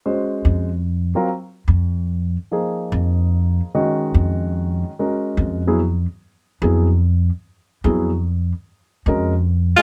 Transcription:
X:1
M:3/4
L:1/8
Q:"Swing" 1/4=146
K:Bbm
V:1 name="Tenor saxophone"
z6 | z6 | z6 | z6 |
z6 | z6 | z6 | z4 z F |]
V:2 name="Grand piano"
[A,DGc]3 z2 [G,CFB] | z6 | [F,B,EA]4- [F,B,EA] z | [E,A,DG]4- [E,A,DG] z |
[A,DGB]3 [G,_C_FA] z2 | z2 [G,_C_FA] z3 | z2 [G,_C_FA] z3 | z2 [A,DGB] z3 |]
V:3 name="Trombone" clef=bass
z6 | z6 | z6 | z6 |
z6 | z6 | z6 | z4 z A, |]
V:4 name="Upright bass" clef=bass
z2 F,,3 z | z2 F,,3 z | z2 F,,3 z | z2 F,,3 z |
z2 F,,3 z | z2 F,,3 z | z2 F,,3 z | z2 F,,3 z |]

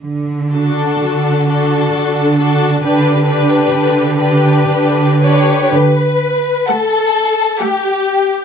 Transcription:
X:1
M:3/4
L:1/8
Q:1/4=64
K:D
V:1 name="Violin section"
z A2 A2 A | B B2 B2 B | z2 f2 f2 |]
V:2 name="Violin section"
z F2 F2 F | G G2 G2 [Gc] | B2 A2 G2 |]
V:3 name="Viola section"
z D2 D2 D | D D2 D2 D | z2 [A,A]2 [A,A]2 |]
V:4 name="Cello section" clef=bass
D,2 D,2 D,2 | D,2 D,2 D,2 | D,2 z4 |]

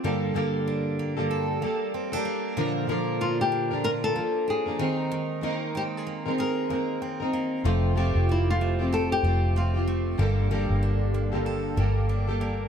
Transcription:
X:1
M:4/4
L:1/16
Q:"Swing 16ths" 1/4=95
K:Gdor
V:1 name="Nylon-string guitar"
z16 | z4 F G3 B A3 _A3 z | z4 G _A3 B4 z4 | z4 E F3 A G3 F3 z |
z16 |]
V:2 name="Steel-string acoustic guitar"
[G,,D,G,B,GA]2 [G,,D,G,B,GA]4- [G,,D,G,B,GA] [G,,D,G,B,GA]3 [G,B,GA]3 [G,B,GA]3 | [B,,D,F,B,DB]2 [B,,D,F,B,DB]4- [B,,D,F,B,DB] [B,,D,F,B,DB]3 [F,B,D]3 [F,B,DB] [_A,C_EB]2- | [_A,C_EB]2 [A,CEB]4- [A,CEB] [A,CEB]3 [A,CEB]3 [CEB]3 | [F,A,CFG]2 [F,A,CFG]4- [F,A,CFG] [F,A,CFG]3 [A,CFG]3 [CFG]3 |
[G,,D,G,B,GA]2 [G,,D,G,B,GA]4- [G,,D,G,B,GA] [G,,D,G,B,GA]3 [G,B,GA]3 [G,B,GA]3 |]
V:3 name="Steel-string acoustic guitar"
G,2 B,2 D2 B,2 A2 B,2 C D B,2 | F,2 B,2 D2 B,2 F2 B,2 D2 _E,2 | _E,2 B,2 C2 B,2 _A2 B,2 C2 B,2 | F,2 A,2 C2 A,2 G2 A,2 C2 A,2 |
B,2 B,2 D2 B,2 A2 B,2 D2 B,2 |]
V:4 name="Fingered electric bass" clef=bass
z16 | z16 | z16 | F,,,3 F,,,6- F,,, F,,,6 |
G,,,3 G,,,6- G,,, G,,,6 |]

